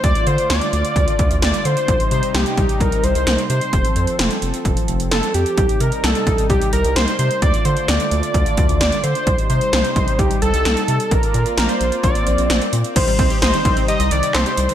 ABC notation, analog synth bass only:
X:1
M:4/4
L:1/16
Q:1/4=130
K:Cdor
V:1 name="Analog synth bass" clef=bass
D,, z D, z D,, z D,, z D,, z D,, D,, D,, z D, z | C,, z C, z C,, z C,, z C,, z C,, C,, C,, z C, z | F,,, z F,, z F,,, z F,,, z F,,, z F,,, F,,, F,,, z F,, z | C,, z C, z C,, z C,, z C,, z C,, C,, C,, z C, z |
D,, z D, z D,, z D,, z D,, z D,, D,, D,, z D, z | C,, z C, z C,, z C,, z C,, z C,, C,, C,, z C, z | B,,, z B,, z B,,, z B,,, z B,,, z B,,, B,,, B,,, z B,, z | C,, z C,, z C,, z C,, z2 C,, C,, z C,, z C,, z |]